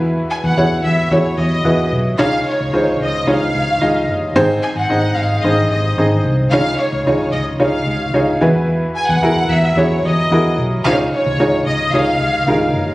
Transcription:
Already playing: fingered electric bass E2, upright piano E3 E4 F#4 G#4 B4
0.31 violin section G#5
0.44 fingered electric bass E2, violin section F#5
0.57 fingered electric bass E2, upright piano E4 F#4 G#4 C#5
0.84 fingered electric bass E2, violin section E5
1.11 fingered electric bass E2, upright piano E4 F#4 G#4 C#5, violin section C#5
1.38 fingered electric bass E2, violin section D#5
1.65 fingered electric bass E2, upright piano E4 F#4 G#4 B4
1.92 fingered electric bass B1
2.19 fingered electric bass C#2, upright piano C#3 D#4 F4 G#4 C#5, violin section F5
2.49 violin section C#5
2.60 fingered electric bass C#2
2.73 fingered electric bass C#2, upright piano D#4 F4 G#4 C5
3.00 fingered electric bass C#2, violin section D#5
3.27 fingered electric bass C#2, upright piano D#4 F4 G#4 C#5
3.31 violin section F5
3.55 fingered electric bass C#2
3.81 fingered electric bass C#2, upright piano D#4 F4 G#4 D#5
4.08 fingered electric bass F#1
4.35 fingered electric bass G#1, upright piano G#2 C4 D#4 G#4 C5
4.63 violin section G#5
4.75 fingered electric bass G#1, violin section F#5
4.89 fingered electric bass G#1, upright piano C4 D#4 G#4 D#5
5.16 fingered electric bass G#1, violin section F5
5.43 fingered electric bass G#1, upright piano C4 D#4 G#4 C5, violin section D#5
5.71 fingered electric bass G#1, violin section D#5
5.97 fingered electric bass G#1, upright piano C4 D#4 G#4 C5
6.25 fingered electric bass C2
6.51 fingered electric bass C#2, upright piano C#3 D#4 F4 G#4 C#5, violin section F5
6.79 violin section C#5
6.92 fingered electric bass C#2
7.06 fingered electric bass C#2, upright piano D#4 F4 G#4 C#5
7.32 fingered electric bass C#2, violin section D#5
7.59 fingered electric bass C#2, upright piano D#4 F4 G#4 C#5, violin section F5
7.86 fingered electric bass C#2
8.14 fingered electric bass C#2, upright piano D#4 F4 G#4 C#5
8.41 fingered electric bass E2, upright piano E3 E4 F#4 G#4 B4
8.96 violin section G#5
9.09 fingered electric bass E2, violin section F#5
9.22 fingered electric bass E2, upright piano E4 F#4 G#4 A#4
9.49 fingered electric bass E2, violin section E5
9.76 fingered electric bass E2, upright piano E4 F#4 G#4 C#5
9.80 violin section C#5
10.04 fingered electric bass E2, violin section D#5
10.31 fingered electric bass E2, upright piano E4 F#4 G#4 A#4
10.58 fingered electric bass B1
10.85 fingered electric bass C#2, upright piano C#3 D#4 F4 G#4 C5, violin section F5
10.93 upright piano C#5
11.13 violin section C#5
11.26 fingered electric bass C#2
11.39 fingered electric bass C#2, upright piano D#4 F4 G#4 C#5
11.66 fingered electric bass C#2, violin section D#5
11.93 fingered electric bass C#2, upright piano D#4 F4 G#4 C#5, violin section F5
12.20 fingered electric bass C#2
12.47 fingered electric bass C#2, upright piano D#4 F4 G#4 A#4
12.74 fingered electric bass F#1

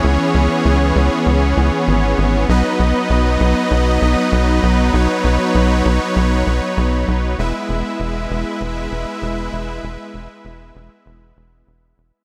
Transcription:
Already playing: supersaw synth E3 B3 C#4 G#4 C#5
0.04 analog synth bass C#2
0.35 analog synth bass C#2
0.65 analog synth bass C#2
0.96 analog synth bass C#2
1.26 analog synth bass C#2
1.57 analog synth bass C#2
1.88 analog synth bass G#1
2.18 analog synth bass G#1
2.49 analog synth bass B1, supersaw synth F#3 D#4 B4 D#5
2.80 analog synth bass B1
3.10 analog synth bass B1
3.41 analog synth bass B1
3.71 analog synth bass B1
4.02 analog synth bass B1
4.32 analog synth bass B1
4.63 analog synth bass B1
4.94 analog synth bass B1, supersaw synth C#5
5.24 analog synth bass B1
5.55 analog synth bass B1
5.86 analog synth bass B1
6.16 analog synth bass B1
6.47 analog synth bass B1
6.77 analog synth bass B1
7.08 analog synth bass B1
7.39 analog synth bass E1, supersaw synth G#3 E4 B4 E5
7.69 analog synth bass E1
8.00 analog synth bass E1
8.31 analog synth bass E1
8.61 analog synth bass E1
8.92 analog synth bass E1
9.22 analog synth bass E1
9.53 analog synth bass E1
9.83 analog synth bass E1
10.14 analog synth bass E1
10.45 analog synth bass E1
10.75 analog synth bass E1
11.06 analog synth bass E1
11.37 analog synth bass E1
11.67 analog synth bass E1
11.98 analog synth bass E1

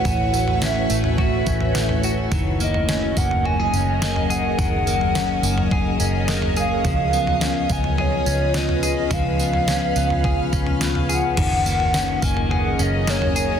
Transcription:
Already playing: clean electric guitar A3 C#4 F#4, ambient pad A3 E4 F#4 B4 C#5
0.05 fingered electric bass A1, clean electric guitar E3, soft synth lead F#5, kick, floor tom, tambourine
0.34 clean electric guitar A3, tambourine
0.48 floor tom
0.62 clean electric guitar C#4, soft synth lead E5, snare, tambourine
0.90 fingered electric bass A1, clean electric guitar A3, tambourine
1.04 floor tom
1.18 clean electric guitar F#4, soft synth lead E5, kick, floor tom
1.46 fingered electric bass A1, clean electric guitar C#4, kick, tambourine
1.60 floor tom
1.75 clean electric guitar A3, snare, tambourine
1.89 floor tom
2.03 clean electric guitar F#4, tambourine
2.32 fingered electric bass F#1, clean electric guitar D#3, ambient pad F#3 C#4 G#4 A#4 D#5, kick, floor tom, tambourine
2.60 clean electric guitar A#3, soft synth lead D#5, tambourine
2.74 floor tom
2.89 clean electric guitar C#4, snare, tambourine
3.17 fingered electric bass F#1, clean electric guitar A#3, soft synth lead F#5, kick, tambourine
3.31 floor tom
3.45 clean electric guitar F#4, soft synth lead G#5, floor tom
3.60 clean electric guitar G#4
3.73 fingered electric bass F#1, clean electric guitar C#4, tambourine
4.01 clean electric guitar A#3, soft synth lead G#5, snare, tambourine
4.16 floor tom
4.30 clean electric guitar G#4, soft synth lead F#5, tambourine
4.58 fingered electric bass F#1, clean electric guitar D#3, soft synth lead F#5, kick, floor tom, tambourine
4.87 clean electric guitar A#3, tambourine
5.01 floor tom
5.15 clean electric guitar C#4, snare, tambourine
5.43 fingered electric bass F#1, clean electric guitar A#3, tambourine
5.58 floor tom
5.71 clean electric guitar G#4, kick, floor tom
6.00 fingered electric bass F#1, clean electric guitar C#4, tambourine
6.28 clean electric guitar A#3, snare, tambourine
6.42 floor tom
6.56 clean electric guitar G#4, soft synth lead F5, tambourine
6.85 fingered electric bass C#2, ambient pad C#3 F4 B4, clean electric guitar F3, kick, floor tom, tambourine
7.13 clean electric guitar B3, tambourine
7.27 floor tom
7.41 clean electric guitar C#4, snare, tambourine
7.69 fingered electric bass C#2, clean electric guitar B3, soft synth lead G#5, kick, tambourine
7.84 floor tom
7.98 clean electric guitar G#4, soft synth lead C#5, floor tom
8.26 fingered electric bass C#2, clean electric guitar C#4, tambourine
8.54 clean electric guitar B3, soft synth lead D#5, snare, tambourine
8.69 floor tom
8.83 clean electric guitar G#4, soft synth lead D#5, tambourine
9.11 fingered electric bass C#2, clean electric guitar F3, ambient pad F5, soft synth lead F5, kick, floor tom, tambourine
9.39 clean electric guitar B3, tambourine
9.53 floor tom
9.68 clean electric guitar C#4, snare, tambourine
9.96 fingered electric bass C#2, clean electric guitar B3, tambourine
10.10 floor tom
10.24 clean electric guitar G#4, kick, floor tom
10.53 fingered electric bass C#2, clean electric guitar C#4, kick, tambourine
10.66 floor tom
10.81 clean electric guitar B3, snare, tambourine
10.95 floor tom
11.09 clean electric guitar G#4, soft synth lead F#5, tambourine
11.37 fingered electric bass F#1, clean electric guitar D#3, ambient pad F#3 C#4 G#4 A#4 D#5, kick, floor tom, crash, tambourine
11.66 clean electric guitar A#3, tambourine
11.80 floor tom
11.94 clean electric guitar C#4, snare, tambourine
12.22 fingered electric bass F#1, clean electric guitar A#3, soft synth lead G#5, kick, tambourine
12.37 floor tom
12.51 clean electric guitar G#4, soft synth lead F#5, floor tom
12.79 fingered electric bass F#1, clean electric guitar C#4, soft synth lead D#5, tambourine
13.07 clean electric guitar A#3, soft synth lead C#5, snare, tambourine
13.22 floor tom
13.36 clean electric guitar G#4, soft synth lead C#5, tambourine

